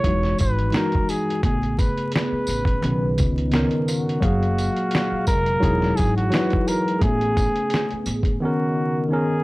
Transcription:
0.00 0.61 E3 medium
0.00 1.40 G#3 medium
0.00 1.41 D#4 medium
0.00 1.41 F#4 medium
0.00 0.35 C#5 loud
0.04 0.33 E1 loud
0.04 0.11 F#3 medium
0.04 0.62 D#4 medium
0.04 0.63 F#4 medium
0.04 kick medium
0.04 closed hi-hat medium
0.11 0.65 G#3 medium
0.23 snare soft
0.38 0.68 G#1 medium
0.38 0.76 B4 loud
0.38 kick medium
0.38 closed hi-hat medium
0.38 tambourine medium
0.59 closed hi-hat soft
0.71 1.27 E3 medium
0.71 1.28 G#3 medium
0.71 1.29 D#4 medium
0.71 1.11 A#4 medium
0.71 snare loud
0.71 closed hi-hat medium
0.75 1.30 F#4 medium
0.92 kick medium
0.92 closed hi-hat soft
1.09 1.44 G#4 medium
1.09 closed hi-hat medium
1.09 tambourine medium
1.30 closed hi-hat soft
1.42 1.88 A1 medium
1.42 4.19 C#3 medium
1.42 2.50 C#3 medium
1.42 2.50 A3 medium
1.42 2.81 B3 medium
1.42 2.51 B3 medium
1.42 2.81 G#4 medium
1.42 1.80 G#4 medium
1.42 kick loud
1.42 closed hi-hat medium
1.47 2.52 G#4 medium
1.63 closed hi-hat soft
1.79 2.13 B4 medium
1.79 kick medium
1.79 closed hi-hat medium
1.79 tambourine soft
1.98 closed hi-hat soft
2.12 3.14 B4 medium
2.12 snare loud
2.12 closed hi-hat medium
2.32 muted upright bass stroke soft
2.47 2.76 A1 medium
2.47 closed hi-hat medium
2.47 tambourine medium
2.65 kick medium
2.65 closed hi-hat soft
2.81 3.20 B1 loud
2.81 3.40 D#3 medium
2.81 4.21 B3 medium
2.81 3.40 B3 medium
2.81 3.41 C#4 medium
2.81 4.20 D#4 medium
2.81 closed hi-hat medium
2.86 3.42 B4 medium
3.18 3.64 C#2 medium
3.18 kick medium
3.18 closed hi-hat medium
3.18 tambourine medium
3.38 closed hi-hat soft
3.51 3.59 C#3 medium
3.51 4.08 B3 medium
3.51 4.08 C#4 medium
3.51 snare loud
3.51 closed hi-hat medium
3.55 4.10 D#3 medium
3.55 4.09 A#4 loud
3.71 closed hi-hat soft
3.88 5.23 F#4 medium
3.88 closed hi-hat medium
3.88 tambourine medium
4.09 closed hi-hat soft
4.20 4.67 F#1 loud
4.20 5.60 A#2 medium
4.20 5.28 F#3 medium
4.20 6.98 G#3 medium
4.20 5.28 A#3 medium
4.20 5.60 F5 medium
4.20 5.29 F5 medium
4.20 kick loud
4.20 closed hi-hat medium
4.25 5.30 G#4 loud
4.43 closed hi-hat soft
4.58 closed hi-hat medium
4.58 tambourine soft
4.76 closed hi-hat soft
4.91 snare loud
4.91 closed hi-hat medium
5.12 muted upright bass stroke soft
5.27 5.56 F1 medium
5.27 5.98 A#4 loud
5.27 kick medium
5.27 closed hi-hat medium
5.27 tambourine medium
5.46 closed hi-hat soft
5.60 5.91 E1 loud
5.60 6.99 E3 medium
5.60 6.18 F#3 loud
5.60 6.19 D#4 medium
5.60 6.20 E4 medium
5.60 7.00 F#4 medium
5.60 kick medium
5.60 closed hi-hat medium
5.64 6.20 G#4 loud
5.82 snare soft
5.96 6.27 G#1 medium
5.96 6.15 G#4 loud
5.96 kick medium
5.96 closed hi-hat medium
5.96 tambourine medium
6.16 6.69 F#4 loud
6.16 closed hi-hat soft
6.30 6.86 F#3 medium
6.30 6.87 D#4 medium
6.30 6.88 E4 medium
6.30 snare loud
6.30 closed hi-hat medium
6.35 6.88 B4 loud
6.50 kick medium
6.50 closed hi-hat soft
6.68 7.02 A#4 medium
6.68 closed hi-hat medium
6.68 tambourine medium
6.88 closed hi-hat soft
6.99 7.46 A1 loud
6.99 8.39 C#3 medium
6.99 8.39 B3 medium
6.99 8.08 B3 medium
6.99 8.08 C#4 medium
6.99 8.07 G#4 medium
6.99 8.39 G#4 medium
6.99 kick loud
6.99 closed hi-hat medium
7.03 8.09 A3 medium
7.03 8.12 G#4 loud
7.21 closed hi-hat soft
7.37 kick medium
7.37 closed hi-hat medium
7.37 tambourine soft
7.56 closed hi-hat soft
7.70 snare loud
7.70 closed hi-hat medium
7.90 muted upright bass stroke soft
7.90 closed hi-hat soft
8.06 8.35 A1 medium
8.06 closed hi-hat medium
8.06 tambourine medium
8.23 kick medium
8.23 closed hi-hat soft
8.40 9.44 C#3 medium
8.40 8.98 D#3 loud
8.40 8.99 B3 medium
8.40 9.00 C#4 medium
8.40 9.44 D#4 medium
8.40 9.07 F#4 medium
8.40 9.44 A#4 medium
8.45 9.00 A#4 loud
9.09 9.44 D#3 medium
9.09 9.44 B3 medium
9.09 9.44 C#4 medium
9.09 9.44 G#4 medium
9.13 9.44 A#4 loud

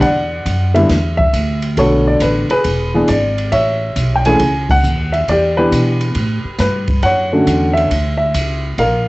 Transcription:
0.01 0.44 E2 medium
0.01 0.86 D5 medium
0.01 0.77 F#5 loud
0.01 kick soft
0.01 ride medium
0.46 0.88 F#2 medium
0.46 kick soft
0.46 hi-hat pedal soft
0.46 ride medium
0.74 0.88 D3 medium
0.74 0.88 G3 medium
0.74 0.88 B3 medium
0.74 0.88 E4 medium
0.74 1.16 E5 medium
0.74 ride soft
0.89 1.32 E2 medium
0.89 kick soft
0.89 snare soft
0.89 ride medium
1.17 1.59 E5 loud
1.17 kick medium
1.33 1.76 D2 medium
1.33 kick soft
1.33 hi-hat pedal soft
1.33 ride medium
1.62 ride soft
1.77 2.20 B1 medium
1.77 2.45 D3 medium
1.77 2.45 A3 medium
1.77 2.45 B3 medium
1.77 2.46 F#4 medium
1.77 2.61 A4 medium
1.77 2.08 C#5 medium
1.77 kick soft
1.77 ride medium
2.08 2.21 D5 medium
2.20 2.48 A1 medium
2.20 2.49 B4 medium
2.20 kick soft
2.20 hi-hat pedal medium
2.20 ride medium
2.50 2.94 G#4 medium
2.50 3.05 B4 loud
2.50 muted upright bass stroke soft
2.50 ride soft
2.64 3.07 E1 medium
2.64 kick soft
2.64 ride medium
2.94 3.07 E3 medium
2.94 3.08 B3 medium
2.94 3.08 D4 medium
2.94 3.08 G#4 medium
3.08 3.51 G#1 medium
3.08 3.50 D5 medium
3.08 kick soft
3.08 hi-hat pedal medium
3.08 ride medium
3.38 ride soft
3.52 3.95 A1 medium
3.52 4.37 C#5 medium
3.52 4.12 E5 loud
3.52 kick soft
3.52 ride medium
3.96 4.39 B1 medium
3.96 kick soft
3.96 hi-hat pedal medium
3.96 ride medium
4.16 4.25 G5 medium
4.25 4.39 E3 medium
4.25 4.40 A3 medium
4.25 4.40 C#4 medium
4.25 4.40 G#4 medium
4.25 4.71 G#5 loud
4.25 ride soft
4.39 4.83 C#2 medium
4.39 kick soft
4.39 ride medium
4.69 5.15 F#5 loud
4.69 kick medium
4.69 crash medium
4.83 5.26 D#2 medium
4.83 hi-hat pedal soft
5.12 5.26 E5 medium
5.12 ride soft
5.28 5.71 E2 medium
5.28 5.57 G4 medium
5.28 5.59 D5 medium
5.28 kick soft
5.28 ride medium
5.57 6.13 E3 medium
5.57 6.13 B3 medium
5.57 6.13 D4 medium
5.57 6.56 G4 medium
5.57 6.55 B4 loud
5.71 6.14 B2 medium
5.71 kick soft
5.71 hi-hat pedal medium
5.71 ride medium
6.01 ride soft
6.15 6.43 A2 medium
6.15 kick soft
6.15 ride medium
6.44 muted upright bass stroke soft
6.59 7.02 G2 medium
6.59 7.05 B4 medium
6.59 kick soft
6.59 snare soft
6.59 hi-hat pedal medium
6.59 ride medium
6.88 kick medium
6.88 ride soft
7.03 7.45 F#2 medium
7.03 7.88 C#5 medium
7.03 7.78 F#5 medium
7.03 kick soft
7.03 ride medium
7.33 7.88 D3 medium
7.33 7.88 A3 medium
7.33 7.88 C#4 medium
7.33 7.89 F#4 medium
7.47 7.89 E2 medium
7.47 kick soft
7.47 hi-hat pedal medium
7.47 ride medium
7.73 8.15 E5 medium
7.73 ride soft
7.91 8.33 D2 medium
7.91 kick soft
7.91 ride medium
8.17 8.59 E5 medium
8.34 8.77 C#2 medium
8.34 kick soft
8.34 hi-hat pedal medium
8.34 ride medium
8.78 9.08 A#1 medium
8.78 9.08 A#4 medium
8.78 9.08 F5 medium
8.78 kick soft
8.78 ride medium

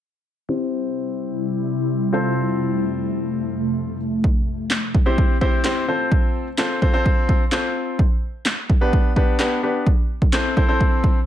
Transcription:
0.49 4.20 C3 medium
0.49 2.12 G3 medium
0.49 2.10 C4 medium
0.49 2.10 E4 medium
0.49 2.12 E4 medium
0.49 2.10 G4 medium
0.49 2.10 C5 medium
2.12 4.22 F2 medium
2.12 4.22 A3 medium
2.12 3.97 C4 medium
2.12 3.97 F4 medium
2.12 3.97 A4 medium
2.12 3.97 C5 medium
4.24 kick loud
4.70 snare medium
4.70 clap loud
4.95 kick medium
5.06 5.35 C4 medium
5.06 5.35 E4 medium
5.06 5.35 G4 medium
5.06 5.35 C5 medium
5.18 kick medium
5.41 5.61 C4 medium
5.41 5.61 E4 medium
5.41 5.61 G4 medium
5.41 5.61 C5 loud
5.41 kick medium
5.64 5.84 C4 medium
5.64 5.84 E4 medium
5.64 5.84 G4 medium
5.64 5.84 C5 loud
5.64 snare medium
5.64 clap loud
5.88 6.47 C4 medium
5.88 6.47 F4 medium
5.88 6.47 A4 medium
5.88 6.47 C5 medium
6.12 kick loud
6.58 6.78 C4 medium
6.58 6.78 F4 medium
6.58 6.78 A4 medium
6.58 6.78 C5 medium
6.58 snare medium
6.58 clap loud
6.82 6.92 C4 medium
6.82 6.92 F4 medium
6.82 6.92 A4 medium
6.82 6.92 C5 loud
6.82 kick medium
6.93 7.42 C4 medium
6.93 7.42 F4 medium
6.93 7.42 A4 medium
6.93 7.43 C5 loud
7.06 kick medium
7.29 kick loud
7.52 7.99 C4 medium
7.52 7.99 F4 medium
7.52 7.99 A4 medium
7.52 7.99 C5 medium
7.52 snare medium
7.52 clap loud
7.99 kick loud
8.45 snare medium
8.45 clap loud
8.70 kick medium
8.81 9.10 B3 medium
8.81 9.10 D4 medium
8.81 9.10 G4 medium
8.81 9.11 B4 medium
8.93 kick medium
9.16 9.36 B3 medium
9.16 9.36 D4 medium
9.16 9.36 G4 medium
9.16 9.36 B4 loud
9.16 kick medium
9.39 9.59 B3 medium
9.39 9.59 D4 medium
9.39 9.59 G4 medium
9.39 9.59 B4 medium
9.39 snare medium
9.39 clap loud
9.63 9.86 B3 medium
9.63 9.87 D4 medium
9.63 9.87 G4 medium
9.63 9.87 B4 medium
9.87 kick loud
10.22 kick medium
10.33 10.53 C4 medium
10.33 10.53 E4 medium
10.33 10.53 A4 medium
10.33 10.53 C5 medium
10.33 snare medium
10.33 clap loud
10.57 10.66 C4 medium
10.57 10.67 E4 medium
10.57 10.67 A4 medium
10.57 10.67 C5 loud
10.57 kick medium
10.68 11.17 C4 medium
10.68 11.17 E4 medium
10.68 11.17 A4 medium
10.68 11.18 C5 loud
10.81 kick medium
11.04 kick medium

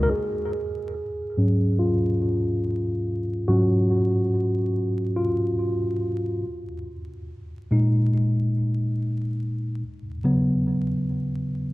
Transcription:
0.00 0.12 G#3 medium
0.00 0.12 D#4 medium
0.00 0.12 F#4 medium
0.00 0.03 A#4 medium
0.00 0.12 A#4 medium
0.00 0.11 D#5 loud
0.11 1.84 G#4 loud
1.37 3.47 G#2 soft
1.37 3.48 F#3 soft
1.37 3.49 C#4 medium
1.79 3.53 F4 medium
3.48 4.07 G#2 medium
3.48 4.07 F#3 soft
3.48 4.08 C#4 medium
3.48 5.22 F#4 medium
5.16 6.39 F4 medium
7.71 9.78 A#2 soft
7.71 9.78 G#3 soft
7.71 9.79 D#4 medium
10.24 11.73 C#3 medium
10.24 11.73 F#3 soft
10.24 11.73 B3 medium

